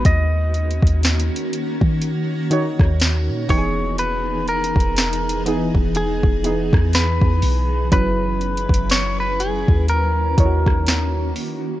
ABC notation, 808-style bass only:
X:1
M:4/4
L:1/16
Q:"Swing 16ths" 1/4=61
K:D#phr
V:1 name="808-style bass" clef=bass
D,,3 D,,2 z2 D,4 D,,2 A,, E,,,2- | E,,,3 E,,,4 E,,,2 E,,,2 E,,2 E,, B,,,2 | F,,,3 F,,,4 D,,3 D,,4 z2 |]